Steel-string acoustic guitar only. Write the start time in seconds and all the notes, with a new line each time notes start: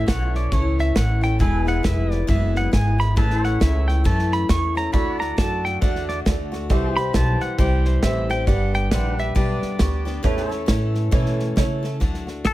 0.07 E3 A3 C#4 E4
0.52 A2 E3 A3 C#4 E4
0.95 E3 A3 C#4 E4
1.21 A3 C#4 E4
1.39 E2 B2 E3 G#3 B3 E4
1.65 E3 G#3 B3 E4
1.83 E3 G#3 B3 E4
2.27 E2 B2 E3 G#3 B3 E4
2.72 E3 G#3 B3 E4
2.98 E3 G#3 B3 E4
3.16 A2 E3 A3 C#4 E4
3.60 E3 A3 C#4 E4
4.04 A2 E3 A3 C#4 E4
4.49 E3 A3 C#4 E4
4.75 A3 C#4 E4
4.92 D3 A3 D4 F#4
5.19 A3 D4 F#4
5.37 D3 A3 D4 F#4
5.81 D3 A3 D4 F#4
6.25 D3 A3 D4 F#4
6.52 A3 D4 F#4
6.70 C3 E3 G3 C4 G4
6.96 G3 C4 G4
7.13 E3 G3 C4 G4
7.58 C3 E3 G3 C4 G4
8.03 E3 G3 C4 G4
8.29 G3 C4 G4
8.47 G2 D3 G3 B3 D4 G4
8.91 G3 B3 D4 G4
9.35 G2 D3 G3 B3 D4 G4
9.79 G3 B3 D4 G4
10.05 G3 B3 D4 G4
10.23 A2 E3 A3 C#4 A4
10.49 A3 C#4 A4
10.66 E3 A3 C#4 A4
11.11 A2 E3 A3 C#4 A4
11.56 E3 A3 C#4 A4
11.83 A3 C#4 A4
12.00 D3 F#3 A3 D4 F#4
12.27 A3 D4 F#4
12.44 F#3 A3